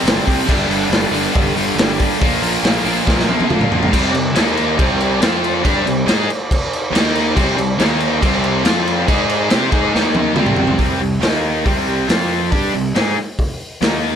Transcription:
Already playing: distorted electric guitar C3 G3 C4
0.04 picked electric bass G1, overdriven electric guitar C3 G3 C4, open hi-hat
0.08 snare
0.26 picked electric bass C2, overdriven electric guitar C3 G3 C4, kick, open hi-hat
0.47 picked electric bass G1, overdriven electric guitar G2 D3 G3, kick, crash
0.68 picked electric bass G1, overdriven electric guitar G2 D3 G3, open hi-hat
0.90 picked electric bass G1, overdriven electric guitar G2 D3 G3, snare, open hi-hat
1.12 picked electric bass G1, overdriven electric guitar G2 D3 G3, open hi-hat
1.33 picked electric bass G1, overdriven electric guitar G2 D3 G3, kick, open hi-hat
1.55 picked electric bass G1, overdriven electric guitar G2 D3 G3, open hi-hat
1.76 picked electric bass G1, overdriven electric guitar G2 D3 G3, snare, open hi-hat
1.98 overdriven electric guitar G2 D3 G3, kick, open hi-hat
2.20 picked electric bass A#1, overdriven electric guitar A#2 F3 A#3, kick, open hi-hat
2.42 picked electric bass A#1, overdriven electric guitar A#2 F3 A#3, open hi-hat
2.62 picked electric bass A#1, overdriven electric guitar A#2 F3 A#3, snare, open hi-hat
2.85 picked electric bass A#1, overdriven electric guitar A#2 F3 A#3, open hi-hat
3.07 picked electric bass A#1, overdriven electric guitar A#2 F3 A#3, kick, snare
3.20 snare
3.27 picked electric bass A#1, overdriven electric guitar A#2 F3 A#3, high tom
3.40 high tom
3.50 picked electric bass F1, overdriven electric guitar A#2 F3 A#3, mid tom
3.61 mid tom
3.71 picked electric bass A#1, overdriven electric guitar A#2 F3 A#3, floor tom
3.83 floor tom
3.92 picked electric bass C2, overdriven electric guitar C3 G3 C4, kick, crash
4.14 picked electric bass C2, overdriven electric guitar C3 G3, crash
4.34 picked electric bass D#2, overdriven electric guitar D#3 A#3 D#4, snare, crash
4.57 crash
4.77 picked electric bass C2, overdriven electric guitar C3 G3 C4, kick, crash
5.01 crash
5.20 picked electric bass F2, overdriven electric guitar F3 C4 F4, snare, crash
5.44 crash
5.64 picked electric bass G2, overdriven electric guitar G3 D4 G4, kick, crash
5.85 picked electric bass C2, overdriven electric guitar C3 G3, crash
6.07 picked electric bass G#2, overdriven electric guitar G#3 D#4 G#4, snare, crash
6.30 crash
6.51 kick, crash
6.73 crash
6.92 picked electric bass D#2, overdriven electric guitar D#3 A#3 D#4, crash
6.96 snare
7.15 crash
7.35 picked electric bass C2, overdriven electric guitar C3 G3 C4, kick, crash
7.57 picked electric bass C2, overdriven electric guitar C3 G3, crash
7.78 picked electric bass D#2, overdriven electric guitar D#3 A#3 D#4, snare, crash
8.00 crash
8.21 picked electric bass C2, overdriven electric guitar C3 G3 C4, kick, crash
8.44 crash
8.63 picked electric bass F2, overdriven electric guitar F3 C4 F4, snare, crash
8.87 crash
9.06 picked electric bass G#2, overdriven electric guitar G#3 D#4 G#4, kick, crash
9.29 crash
9.50 picked electric bass C3, overdriven electric guitar C4 G4 C5, snare, crash
9.71 picked electric bass G#2, overdriven electric guitar G#3 D#4 G#4, kick, crash
9.93 picked electric bass D#2, overdriven electric guitar D#3 A#3 D#4, snare
10.15 high tom
10.36 picked electric bass C2, overdriven electric guitar C3 G3 C4, mid tom
10.46 mid tom
10.56 floor tom
10.67 floor tom
10.78 picked electric bass C2, overdriven electric guitar C3 G3 C4, kick, open hi-hat
11.00 picked electric bass C2, overdriven electric guitar C3 G3
11.21 picked electric bass D#2, overdriven electric guitar D#3 A#3 D#4, snare, open hi-hat
11.66 picked electric bass C2, overdriven electric guitar C3 G3 C4, kick, open hi-hat
12.08 picked electric bass F2, overdriven electric guitar F3 C4 F4, snare, open hi-hat
12.51 picked electric bass G2, overdriven electric guitar G3 D4 G4, kick, open hi-hat
12.73 picked electric bass C2, overdriven electric guitar C3 G3
12.95 picked electric bass G#2, overdriven electric guitar G#3 D#4 G#4, snare, open hi-hat
13.39 kick, open hi-hat
13.81 picked electric bass D#2, overdriven electric guitar D#3 A#3 D#4, snare, open hi-hat

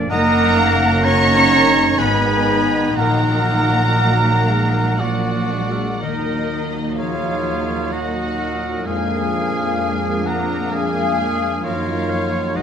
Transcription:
Already playing: harp F2 F3 A#3 D4 A#4
0.09 double bass section F#1, harp F#2, trombone section F#2 D#3, french horn section A#3 D#4, cello section A#3, viola section A#3 D#4, trumpet A#4, violin section A#4 A#5, clarinet D#5, oboe F#5, flute section F#5
0.42 harp F#3
0.59 clarinet F5
0.74 harp A#3
1.04 cello section C#4, harp D#4, trumpet C#5, violin section C#5 C#6, clarinet F#5, oboe A#5, flute section A#5
1.36 harp A#4
1.67 harp D#4
1.98 double bass section G#1, harp G#2, trombone section G#2, french horn section G#3, viola section G#3, cello section B3, trumpet B4, violin section B4 B5, clarinet D#5, flute section G#5, oboe G#5
2.29 harp G#3
2.62 harp D#4 D#5
2.96 double bass section A#1, trombone section A#2, harp A#2, french horn section F#3, viola section F#3, cello section A#3, violin section A#4 A#5, clarinet A#4, trumpet A#4, oboe F#5, flute section F#5
3.31 harp A#3
3.65 harp F#3
3.99 french horn section F#3, harp D#4
4.33 harp A#4
4.49 french horn section G#3
4.66 harp D#4
4.99 harp A#2, trombone section F3, cello section F#3, viola section A#3 D4, french horn section A#3, violin section F#4 F#5, trumpet F#4, oboe D5, flute section D5
5.35 harp A#3
5.52 french horn section G#3
5.70 harp D4 A#4
6.02 double bass section D#2, trombone section A#2 F#3, harp D#3, cello section D#3, french horn section A#3 D#4, trumpet D#4, violin section D#4 D#5, viola section D#4, oboe A#4, flute section A#4
6.35 harp A#3
6.66 harp D#4
6.97 cello section F3, trumpet F4, violin section F4 F5, clarinet G#4, harp A#4, flute section C#5, oboe C#5
7.29 harp D#4
7.62 harp A#4
7.92 cello section F#3, harp D#4, clarinet F#4, trumpet F#4, violin section F#4 F#5, flute section D#5, oboe D#5
8.25 harp A#4
8.39 clarinet A#4
8.57 harp D#4
8.86 double bass section F2, harp F2, trombone section F3, cello section G#3, viola section A#3, french horn section D4, clarinet G#4, trumpet G#4, violin section G#4 G#5, oboe F5, flute section F5
9.20 harp F3
9.50 harp A#3
9.82 harp D4, viola section D4
10.12 harp A#4
10.26 cello section A#3, trumpet A#4, violin section A#4 A#5, oboe F#5, flute section F#5
10.43 harp D4
10.72 cello section G#3, violin section G#4 G#5, clarinet G#4, trumpet G#4, harp A#4, oboe F5, flute section F5
11.04 harp D4
11.35 harp A#3
11.63 double bass section F#2, harp F#2, trombone section D#3 F#3, cello section F3, french horn section A#3 D#4, viola section D#4, trumpet F4, violin section F4 F5, clarinet A#4, oboe C#5, flute section C#5
11.95 harp A#3
12.10 clarinet C#5
12.26 harp D#4 A#4
12.56 double bass section G#1, harp G#2, cello section F#3, french horn section G#3, viola section G#3, trombone section G#3, trumpet F#4, violin section F#4 F#5, clarinet B4, oboe D#5, flute section D#5

